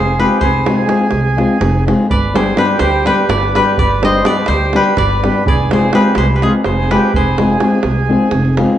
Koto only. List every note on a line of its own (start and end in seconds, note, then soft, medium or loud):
0.00 1.66 G#4 medium
0.00 0.25 C5 medium
0.00 0.34 D5 loud
0.19 0.47 B4 medium
0.41 2.12 C5 medium
2.11 3.29 D5 medium
2.36 2.64 C5 medium
2.58 2.85 B4 medium
2.79 3.13 C5 loud
3.07 3.56 B4 loud
3.29 3.79 D5 medium
3.56 4.54 B4 medium
3.79 4.11 D5 medium
4.05 4.32 D#5 medium
4.26 4.98 D5 medium
4.48 4.82 C5 loud
4.76 5.79 B4 loud
4.98 5.48 D5 loud
5.48 7.08 D5 medium
5.73 6.01 C5 medium
5.95 6.24 B4 medium
6.18 6.24 C5 loud
6.36 6.72 B4 soft
6.43 6.49 G#4 medium
6.66 6.97 C5 medium
6.91 7.22 B4 medium
7.16 8.78 C5 medium